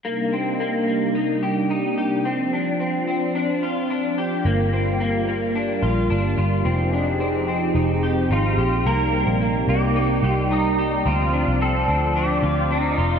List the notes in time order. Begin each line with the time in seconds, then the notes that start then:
0.05 C3 G3 A#3 D4 D#4
0.33 C4
0.60 A#3
0.87 A#3
1.15 D#4
1.43 G4
1.70 D#4
1.98 G4
2.25 F3 C4
2.53 D4
2.80 C4
3.08 C4
3.35 D4
3.63 F4
3.90 D4
4.18 G4
4.45 G1 G3 A#3 F4
4.73 C4
5.00 A#3
5.28 A#3
5.55 D4
5.83 A#1 F4
6.10 G1 D4
6.38 G1 F4
6.64 F1 F3 C4 D#4 G4 G#4
6.93 D4
7.20 C4
7.48 C4
7.75 F1 D#4
8.03 G4
8.30 G#1 D#4 F4
8.58 A#1 G4
8.85 C2 C3 G3 A#3 D#4 A#4 D5
9.13 C4
9.27 A#1
9.41 A#3
9.68 C2 A#3 G4
9.96 D#4
10.23 C2 G4
10.30 F4
10.51 D#4
10.78 G4
11.06 D2 F3 C4 F4
11.33 D4
11.47 C2
11.61 C4 A4
11.88 D2 C4
12.16 D4 G4
12.43 D2 F4
12.71 D4 D#4
12.98 F1 F4